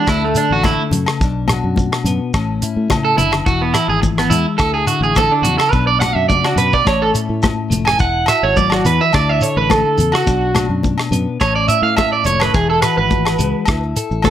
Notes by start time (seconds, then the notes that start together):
0.07 D2 D3 A3 E4, kick, cross-stick, low agogo, shekere
0.24 A3
0.35 D4 A4, closed hi-hat, muted conga, shekere
0.51 A1 F#4
0.63 D3 E4, kick, cross-stick, high conga, low agogo, shekere
0.91 F#2 C#3, closed hi-hat, low conga, shekere
1.06 cross-stick, low agogo
1.21 B1 B2 D4, kick, muted conga, shekere
1.48 cross-stick, closed hi-hat, high conga, low agogo, shekere
1.52 F#4
1.64 F#2
1.76 kick, high conga, shekere
1.92 cross-stick, low agogo
2.04 F#2 B3, closed hi-hat, muted conga, shekere
2.33 A1 A2 C#4, kick, cross-stick, muted conga, low agogo, shekere
2.62 E4, closed hi-hat, muted conga, shekere
2.76 A2
2.90 C#3, kick, cross-stick, high conga, low agogo, shekere
3.05 A4
3.18 F#1 D3 E4, closed hi-hat, high conga, shekere
3.32 cross-stick, low agogo
3.46 E1 E3 E4 F#4, kick, muted conga, shekere
3.62 B3
3.74 E4, cross-stick, closed hi-hat, low agogo, shekere
3.88 G#1 G#4
4.02 muted clean electric guitar stroke, kick, high conga, shekere
4.18 B3, cross-stick, low agogo
4.30 E2 G#3 E4, closed hi-hat, muted conga, shekere
4.58 D2 D3 E4 A4, kick, cross-stick, low agogo, shekere
4.74 G#4
4.87 E4 F#4, closed hi-hat, muted conga, shekere
5.01 A1 G#4, shekere
5.15 D3 A4, kick, cross-stick, high conga, low agogo, shekere
5.32 D4
5.42 E2 C#3 F#4, closed hi-hat, low conga, shekere
5.58 A4, cross-stick, low agogo
5.71 B1 B2 D4 B4, kick, muted conga, shekere
5.87 D5
6.00 F#4 F#5, cross-stick, closed hi-hat, high conga, low agogo, shekere
6.15 F#2 E5
6.28 C#3 D5, kick, high conga, shekere
6.45 F#4, cross-stick, low agogo
6.56 F#2 B2 B4, closed hi-hat, muted conga, shekere
6.73 D5, kick, shekere
6.85 A1 A2 C#4 C#5, kick, cross-stick, low agogo, shekere
7.02 A4
7.14 E4, closed hi-hat, muted conga, shekere
7.29 A2
7.42 kick, cross-stick, high conga, low agogo, shekere
7.70 F1 A3, closed hi-hat, high conga, shekere
7.85 G#5, cross-stick, low agogo
7.98 E1 E4 F#5, muted clean electric guitar stroke, kick, muted conga, shekere
8.26 F#4 E5, cross-stick, closed hi-hat, low agogo, shekere
8.43 G#1 C#5
8.57 F#3 D5, kick, high conga, shekere
8.70 F#4, cross-stick, low agogo
8.85 E2 E3 B4, closed hi-hat, shekere
9.01 E5
9.13 D2 D3 E4 D5, kick, cross-stick, low agogo, shekere
9.29 E5
9.41 A4 C#5, closed hi-hat, muted conga, shekere
9.57 A1 B4
9.70 D3 A4, kick, cross-stick, high conga, low agogo, shekere
9.98 E2 C#3, closed hi-hat, low conga, shekere
10.12 F#4, cross-stick, low agogo
10.26 B1 B2 D4, kick, muted conga, shekere
10.54 D4, cross-stick, closed hi-hat, high conga, low agogo, shekere
10.69 F#2
10.83 kick, high conga, shekere
10.98 cross-stick, low agogo
11.11 F#2 B3, closed hi-hat, muted conga, shekere
11.40 A1 A2 C#4 C#5, kick, cross-stick, muted conga, low agogo, shekere
11.55 D5
11.68 E4 E5, closed hi-hat, muted conga, shekere
11.82 A2 F5
11.97 E5, kick, cross-stick, high conga, low agogo, shekere
12.12 D5
12.25 F1 A3 C#5, closed hi-hat, high conga, shekere
12.40 B4, cross-stick, low agogo
12.54 E1 E3 E4 G#4, kick, muted conga, shekere
12.70 A4
12.82 F#4 B4, cross-stick, closed hi-hat, low agogo, shekere
12.98 G#1 B4
13.10 kick, high conga, shekere
13.25 cross-stick, low agogo
13.39 C#2 G#3, closed hi-hat, muted conga, shekere
13.65 D2 E4, muted clean electric guitar stroke, kick, cross-stick, muted conga, low agogo, shekere
13.96 A4, closed hi-hat, muted conga, shekere
14.11 A1, shekere
14.22 D3 A4, kick, cross-stick, high conga, low agogo, shekere